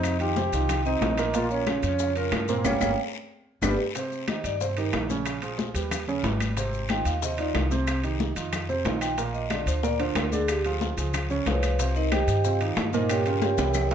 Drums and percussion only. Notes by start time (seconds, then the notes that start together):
0.03 high bongo, high conga, high timbale, long guiro, claves, maracas
0.20 high conga, high timbale, maracas
0.36 high bongo, high conga, low timbale, short guiro, maracas
0.53 high conga, high timbale, short guiro, maracas
0.69 high bongo, high conga, low conga, high timbale, long guiro, claves, maracas
0.85 high conga, maracas
1.01 high bongo, low bongo, high conga, high timbale, low timbale, short guiro, maracas
1.17 high bongo, high timbale, short guiro, claves, maracas
1.34 high bongo, high conga, high timbale, long guiro, maracas
1.50 high conga, maracas
1.67 high bongo, high conga, high timbale, low timbale, short guiro, claves, maracas
1.83 high conga, high timbale, short guiro, maracas
1.99 high bongo, high conga, long guiro, maracas
2.16 high conga, high timbale, maracas
2.32 high bongo, low bongo, high conga, high timbale, low timbale, short guiro, claves, maracas
2.48 high conga, short guiro, maracas
2.65 low bongo, high conga, high timbale, long guiro, claves, maracas
2.81 low bongo, high conga, high timbale, long guiro, claves, maracas
3.62 low bongo, high conga, high timbale, long guiro, claves, maracas
3.95 high bongo, high conga, high timbale, long guiro, maracas
4.12 high conga, maracas
4.28 high bongo, high conga, high timbale, low timbale, short guiro, claves, maracas
4.44 high conga, high timbale, short guiro, maracas
4.61 high bongo, high conga, long guiro, maracas
4.77 high conga, high timbale, maracas
4.93 high bongo, low bongo, high conga, high timbale, low timbale, short guiro, claves, maracas
5.10 high conga, short guiro, maracas
5.26 high bongo, high conga, high timbale, long guiro, claves, maracas
5.42 high bongo, high conga, high timbale, maracas
5.58 high bongo, high conga, low timbale, short guiro, maracas
5.75 high bongo, high conga, high timbale, short guiro, maracas
5.91 high bongo, high conga, low conga, high timbale, long guiro, claves, maracas
6.07 high conga, low conga, maracas
6.24 high bongo, low bongo, high conga, high timbale, low timbale, short guiro, maracas
6.40 high bongo, high conga, high timbale, short guiro, claves, maracas
6.57 high bongo, high timbale, long guiro, maracas
6.74 high conga, maracas
6.89 high bongo, high conga, high timbale, low timbale, short guiro, claves, maracas
7.05 high conga, high timbale, short guiro, maracas
7.22 high bongo, high conga, long guiro, maracas
7.38 high conga, high timbale, maracas
7.55 high bongo, low bongo, high conga, high timbale, low timbale, short guiro, claves, maracas
7.71 high conga, short guiro, maracas
7.87 high bongo, high conga, high timbale, long guiro, claves, maracas
8.03 high bongo, high conga, high timbale, maracas
8.20 high bongo, high conga, low timbale, short guiro, maracas
8.36 high bongo, high conga, high timbale, short guiro, maracas
8.53 high bongo, high conga, low conga, high timbale, long guiro, claves, maracas
8.69 high conga, maracas
8.85 high bongo, low bongo, high conga, high timbale, low timbale, short guiro, maracas
9.01 high bongo, high timbale, short guiro, claves, maracas
9.18 high bongo, high conga, high timbale, long guiro, maracas
9.34 high conga, maracas
9.50 high bongo, high conga, high timbale, low timbale, short guiro, claves, maracas
9.67 high timbale, short guiro, maracas
9.83 high bongo, high conga, long guiro, maracas
9.99 high conga, high timbale, maracas
10.15 high bongo, low bongo, high conga, high timbale, low timbale, short guiro, claves, maracas
10.32 high conga, short guiro, maracas
10.48 high bongo, high timbale, long guiro, claves, maracas
10.64 high bongo, high conga, high timbale, maracas
10.81 high bongo, high conga, low timbale, short guiro, maracas
10.98 high bongo, high conga, high timbale, short guiro, maracas
11.14 high bongo, high conga, low conga, high timbale, long guiro, claves, maracas
11.30 high conga, low conga, maracas
11.46 high bongo, low bongo, high conga, high timbale, low timbale, short guiro, maracas
11.63 high bongo, high timbale, short guiro, claves, maracas
11.79 high bongo, high conga, high timbale, long guiro, maracas
11.96 high conga, maracas
12.12 high bongo, high conga, high timbale, low timbale, short guiro, claves, maracas
12.28 high conga, high timbale, short guiro, maracas
12.44 high bongo, high conga, long guiro, maracas
12.61 high conga, high timbale, maracas
12.77 high bongo, low bongo, high conga, high timbale, low timbale, short guiro, claves, maracas
12.93 high conga, short guiro, maracas
13.09 high bongo, high conga, high timbale, long guiro, claves, maracas
13.26 high bongo, high conga, high timbale, maracas
13.42 high bongo, high conga, low timbale, short guiro, maracas
13.58 low bongo, high conga, high timbale, short guiro, maracas
13.74 low conga, high timbale, long guiro, claves, maracas
13.91 low timbale, maracas